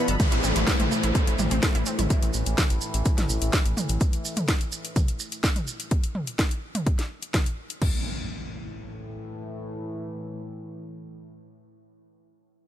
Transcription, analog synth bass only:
0, 0, Header, 1, 2, 480
1, 0, Start_track
1, 0, Key_signature, 0, "minor"
1, 0, Tempo, 476190
1, 200, Time_signature, 4, 2, 24, 8
1, 12775, End_track
2, 0, Start_track
2, 0, Title_t, "Analog synth bass"
2, 0, Program_c, 0, 38
2, 84, Note_on_c, 0, 31, 81
2, 173, Note_off_c, 0, 31, 0
2, 326, Note_on_c, 0, 33, 78
2, 414, Note_off_c, 0, 33, 0
2, 442, Note_on_c, 0, 33, 95
2, 535, Note_off_c, 0, 33, 0
2, 565, Note_on_c, 0, 33, 81
2, 653, Note_off_c, 0, 33, 0
2, 804, Note_on_c, 0, 33, 77
2, 893, Note_off_c, 0, 33, 0
2, 1044, Note_on_c, 0, 33, 82
2, 1133, Note_off_c, 0, 33, 0
2, 1284, Note_on_c, 0, 33, 78
2, 1373, Note_off_c, 0, 33, 0
2, 1399, Note_on_c, 0, 33, 95
2, 1494, Note_off_c, 0, 33, 0
2, 1525, Note_on_c, 0, 33, 83
2, 1613, Note_off_c, 0, 33, 0
2, 1765, Note_on_c, 0, 33, 77
2, 1853, Note_off_c, 0, 33, 0
2, 2006, Note_on_c, 0, 33, 81
2, 2094, Note_off_c, 0, 33, 0
2, 2245, Note_on_c, 0, 33, 76
2, 2333, Note_off_c, 0, 33, 0
2, 2363, Note_on_c, 0, 33, 96
2, 2456, Note_off_c, 0, 33, 0
2, 2484, Note_on_c, 0, 33, 76
2, 2573, Note_off_c, 0, 33, 0
2, 2724, Note_on_c, 0, 33, 76
2, 2813, Note_off_c, 0, 33, 0
2, 2965, Note_on_c, 0, 33, 80
2, 3053, Note_off_c, 0, 33, 0
2, 3204, Note_on_c, 0, 33, 78
2, 3293, Note_off_c, 0, 33, 0
2, 3320, Note_on_c, 0, 33, 97
2, 3415, Note_off_c, 0, 33, 0
2, 3443, Note_on_c, 0, 33, 83
2, 3532, Note_off_c, 0, 33, 0
2, 3684, Note_on_c, 0, 33, 77
2, 3773, Note_off_c, 0, 33, 0
2, 3924, Note_on_c, 0, 33, 77
2, 4013, Note_off_c, 0, 33, 0
2, 12775, End_track
0, 0, End_of_file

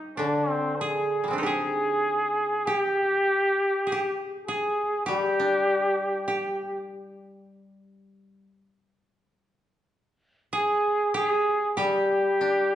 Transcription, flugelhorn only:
0, 0, Header, 1, 2, 480
1, 0, Start_track
1, 0, Tempo, 1234568
1, 1040, Time_signature, 4, 2, 24, 8
1, 1040, Tempo, 1207243
1, 3440, Tempo, 1232033
1, 5014, End_track
2, 0, Start_track
2, 0, Title_t, "Flugelhorn"
2, 0, Program_c, 0, 56
2, 65, Note_on_c, 0, 62, 65
2, 198, Note_off_c, 0, 62, 0
2, 198, Note_on_c, 0, 60, 65
2, 295, Note_on_c, 0, 72, 44
2, 301, Note_off_c, 0, 60, 0
2, 312, Note_on_c, 0, 68, 67
2, 318, Note_off_c, 0, 72, 0
2, 531, Note_off_c, 0, 68, 0
2, 534, Note_on_c, 0, 72, 45
2, 554, Note_on_c, 0, 68, 72
2, 560, Note_off_c, 0, 72, 0
2, 1034, Note_on_c, 0, 67, 81
2, 1040, Note_off_c, 0, 68, 0
2, 1654, Note_off_c, 0, 67, 0
2, 1753, Note_on_c, 0, 68, 69
2, 1978, Note_off_c, 0, 68, 0
2, 1991, Note_on_c, 0, 67, 73
2, 2699, Note_off_c, 0, 67, 0
2, 4155, Note_on_c, 0, 68, 83
2, 4382, Note_off_c, 0, 68, 0
2, 4393, Note_on_c, 0, 68, 83
2, 4621, Note_off_c, 0, 68, 0
2, 4645, Note_on_c, 0, 67, 78
2, 5014, Note_off_c, 0, 67, 0
2, 5014, End_track
0, 0, End_of_file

